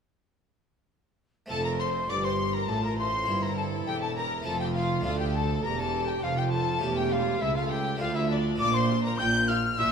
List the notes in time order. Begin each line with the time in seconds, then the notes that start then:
1.46 A3 C4 F4 A5
1.50 F1 F2 A4 A5
1.65 A#4 A#5
1.79 C5 C6
2.09 G1 G2 G4 D5 D6
2.24 C5 C6
2.54 A#4 A#5
2.68 A1 A2 F4 A4 A5
2.83 A#4 A#5
2.98 C5 C6
3.24 A#3 C4 E4
3.28 G1 G2 E4
3.42 A#4 A#5
3.57 A4 A5
3.86 E1 E2 G4 G5
4.02 A4 A5
4.16 A#4 A#5
4.42 F1 A3 C4 F4 A5
4.46 F2 F4 A4
4.60 G4 G5
4.75 F4 F5
5.01 D2 A3 D4 F4 F5
5.05 D2 F4 A4
5.20 G4 G5
5.34 A4 A5
5.64 E1 E2 G4 A#4 A#5
5.78 A4 A5
6.08 G4 G5
6.23 F1 F2 F4 F5
6.37 G4 G5
6.51 A4 A5
6.79 E1 A3 C#4 G4
6.83 E2
6.96 G4 G5
7.10 F4 F5
7.40 C#2 E4 A4 E5
7.55 F4 F5
7.70 G4 G5
7.97 D2 A3 D4 F4 F5
8.01 D2
8.14 E4 E5
8.29 D4 D5
8.56 A#3 D4 F4 D5 D6
8.60 A#1 A#2
8.74 C5 C6
8.89 F4
9.04 A#4 A#5
9.18 A#1 A#2 F4 G5 G6
9.48 F4 F5 F6
9.78 A#1 A#2 F4 E5 E6